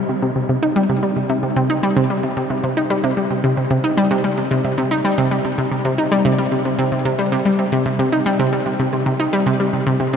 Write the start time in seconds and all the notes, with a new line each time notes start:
0.09 C3
0.22 C3
0.36 C3
0.49 C3
0.63 D#4
0.76 G3
0.89 C3
1.03 G3
1.16 C3
1.29 C3
1.43 C3
1.56 C3
1.70 D#4
1.83 G3
1.96 C3
2.10 G3
2.23 C3
2.37 C3
2.50 C3
2.63 C3
2.77 D#4
2.90 G3
3.04 C3
3.17 G3
3.30 C3
3.44 C3
3.57 C3
3.71 C3
3.84 D#4
3.97 G3
4.11 C3
4.24 G3
4.38 C3
4.51 C3
4.64 C3
4.78 C3
4.91 D#4
5.05 G3
5.18 C3
5.31 G3
5.45 C3
5.58 C3
5.71 C3
5.85 C3
5.98 D#4
6.12 G3
6.25 C3
6.38 G3
6.52 C3
6.65 C3
6.79 C3
6.92 C3
7.05 C3
7.19 G3
7.32 C3
7.45 G3
7.59 C3
7.72 C3
7.86 C3
7.99 C3
8.12 D#4
8.26 G3
8.39 C3
8.53 G3
8.66 C3
8.79 C3
8.93 C3
9.06 C3
9.20 D#4
9.33 G3
9.46 C3
9.60 G3
9.73 C3
9.87 C3
10.00 C3
10.13 C3